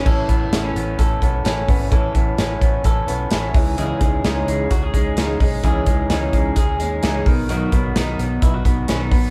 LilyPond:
<<
  \new Staff \with { instrumentName = "Twelve-string acoustic guitar" } { \time 4/4 \key a \lydian \tempo 4 = 129 <a cis' e' b'>8 <cis' e' b'>8 <a cis' e' b'>4 <a cis' e' b'>8 <cis' e' b'>8 <a cis' e' b'>8 <cis' e' b'>8 | <a cis' e' b'>8 <cis' e' b'>8 <a cis' e' b'>4 <a cis' e' b'>8 <cis' e' b'>8 <a cis' e' b'>8 <gis cis' dis' gis'>8 | <cis e gis cis' dis' gis'>8 <gis cis' dis' gis'>8 <cis e gis cis' dis' gis'>4 <gis cis' dis' gis'>8 <gis cis' dis' gis'>8 <cis e gis cis' dis' gis'>8 <gis cis' dis' gis'>8 | <cis e gis cis' dis' gis'>8 <gis cis' dis' gis'>8 <cis e gis cis' dis' gis'>4 <gis cis' dis' gis'>8 <gis cis' dis' gis'>8 <cis e gis cis' dis' gis'>8 <fis b dis' b'>8 |
<b, dis fis b dis' b'>8 <fis b dis' b'>8 <b, dis fis b dis' b'>4 <fis b dis' b'>8 <fis b dis' b'>8 <b, dis fis b dis' b'>8 <fis b dis' b'>8 | }
  \new Staff \with { instrumentName = "Clean electric guitar" } { \time 4/4 \key a \lydian <e a'>8 b8 b16 cis'16 b8 a'8 b8 cis'8 b8 | <e a'>8 b8 cis'8 b8 a'8 b8 cis'8 e8 | <e gis'>8 gis8 dis'8 gis8 fis'16 gis'16 gis8 dis'8 gis8 | <e gis'>8 gis8 dis'8 gis8 gis'8 gis8 dis'8 dis8 |
<dis fis'>8 b8 dis'8 b8 e'16 fis'16 b8 cis'16 dis'16 b8 | }
  \new Staff \with { instrumentName = "Fingered electric bass" } { \clef bass \time 4/4 \key a \lydian a,,8 a,,8 a,,8 a,,8 a,,8 b,,8 a,,8 gis,,8 | a,,8 a,,8 a,,8 a,,8 a,,8 b,,8 a,,8 cis,8~ | cis,8 cis,8 cis,8 cis,8 cis,8 cis,8 cis,8 b,,8 | cis,8 cis,8 cis,8 cis,8 cis,8 dis,8 cis,8 b,,8~ |
b,,8 b,,8 b,,8 b,,8 b,,8 b,,8 b,,8 a,,8 | }
  \new DrumStaff \with { instrumentName = "Drums" } \drummode { \time 4/4 <cymc bd>8 <hh bd>8 <hh sn>8 hh8 <hh bd>8 <hh bd>8 <hh sn>8 <hho bd>8 | <hh bd>8 <hh bd>8 <hh sn>8 <hh bd>8 <hh bd>8 hh8 <hh sn>8 <hho bd>8 | hh8 <hh bd>8 <hh sn>8 hh8 <hh bd>8 <hh bd>8 <hh sn>8 <hho bd>8 | <hh bd>8 <hh bd>8 <hh sn>8 <hh bd>8 <hh bd>8 hh8 <hh sn>8 <hho bd>8 |
hh8 <hh bd>8 <hh sn>8 hh8 <hh bd>8 <hh bd>8 <hh sn>8 <hho bd>8 | }
>>